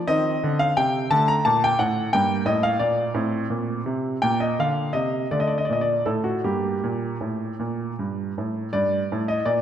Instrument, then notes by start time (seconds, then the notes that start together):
grand piano
0.07 D#3 C4 D#5
0.44 D3
0.59 F5
0.77 C3 G5
1.10 D3 A3 A5
1.28 A#5
1.45 A#2 A5
1.64 G5
1.79 A2 F#5
2.13 G2 A#3 G5
2.46 A2 D#5
2.63 F5
2.79 A#2 D5
3.14 A2 C4
3.50 A#2
3.86 C3
4.22 A#2 A#3 G5
4.40 D#5
4.59 D3 F5
4.93 C3 D#5
5.31 D3 A3 D5
5.40 D#5
5.47 D5
5.58 D#5
5.65 D5
5.70 A#2 D#5
5.81 D5
6.06 A2 A4
6.24 F#4
6.44 G2 A#3 G4
6.84 A#2
7.21 A2
7.60 A#2
7.99 G2
8.38 A2
8.73 G2 D5
9.12 A2
9.28 D#5
9.46 A#2 D5